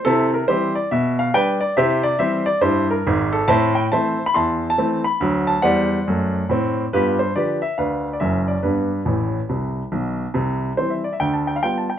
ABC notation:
X:1
M:4/4
L:1/16
Q:"Swing" 1/4=140
K:Cmix
V:1 name="Grand piano"
[CEA]2 B2 [EGc]2 d2 e2 f2 [=Bdg]2 d2 | [Gce]2 d2 [Gce]2 d2 [EGc]2 B4 A2 | [K:Gmix] [cea]2 g2 [cea]3 b [eac']3 a3 b2- | b2 a2 [cd^f]12 |
[FGB]2 c2 [GBd]2 e2 [Bdf]3 d e2 d2 | [DGB]12 z4 | z4 c e d e g a g f g a g z |]
V:2 name="Grand piano" clef=bass
C,4 [E,G,C]4 =B,,4 [G,D]4 | [C,E]4 [E,G,C]4 G,,4 [_A,,,_A,,]4 | [K:Gmix] [A,,C]4 [E,A,C]4 E,,4 [E,A,C]4 | [D,,^F,]4 [E,,G,]4 [^F,,A,]4 [A,,C]4 |
[G,,B,]4 [D,F,D]4 D,,4 [^F,,,^F,,]4 | [G,,B,]4 [A,,,A,,]4 [C,,C,]4 [B,,,B,,]4 | [C,,C,]4 [E,G,C]4 [D,,D,]4 [G,B,F]4 |]